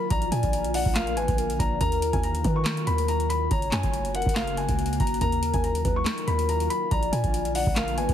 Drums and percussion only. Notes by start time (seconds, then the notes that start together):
0.10 kick, closed hi-hat
0.22 closed hi-hat
0.32 closed hi-hat
0.43 kick, closed hi-hat
0.53 closed hi-hat
0.64 closed hi-hat
0.74 open hi-hat
0.86 kick
0.95 snare, clap, closed hi-hat
1.07 closed hi-hat
1.17 closed hi-hat
1.28 kick, closed hi-hat
1.38 closed hi-hat
1.50 closed hi-hat
1.59 kick, closed hi-hat
1.81 kick, closed hi-hat
1.92 closed hi-hat
2.02 closed hi-hat
2.13 kick, closed hi-hat
2.23 closed hi-hat
2.35 closed hi-hat
2.44 kick, closed hi-hat
2.65 snare, clap, closed hi-hat
2.77 closed hi-hat
2.87 closed hi-hat
2.98 closed hi-hat
3.08 closed hi-hat
3.20 closed hi-hat
3.30 closed hi-hat
3.51 kick, closed hi-hat
3.62 closed hi-hat
3.72 snare, clap, closed hi-hat
3.83 kick, closed hi-hat
3.94 closed hi-hat
4.05 closed hi-hat
4.15 closed hi-hat, open hi-hat
4.22 closed hi-hat
4.26 kick, closed hi-hat
4.35 snare, clap, closed hi-hat
4.47 closed hi-hat
4.57 closed hi-hat
4.69 kick, closed hi-hat
4.79 closed hi-hat
4.86 closed hi-hat
4.93 closed hi-hat
5.00 kick, closed hi-hat
5.07 closed hi-hat
5.14 closed hi-hat
5.21 kick, closed hi-hat
5.32 closed hi-hat
5.43 closed hi-hat
5.54 kick, closed hi-hat
5.64 closed hi-hat
5.75 closed hi-hat
5.85 kick, closed hi-hat
6.06 snare, clap, closed hi-hat
6.18 closed hi-hat
6.28 closed hi-hat
6.39 closed hi-hat
6.49 closed hi-hat
6.60 closed hi-hat
6.70 closed hi-hat
6.91 kick, closed hi-hat
7.03 closed hi-hat
7.13 closed hi-hat
7.24 kick, closed hi-hat
7.34 closed hi-hat
7.45 closed hi-hat
7.55 open hi-hat
7.66 kick
7.76 snare, clap, closed hi-hat
7.88 closed hi-hat
7.98 closed hi-hat
8.09 kick, closed hi-hat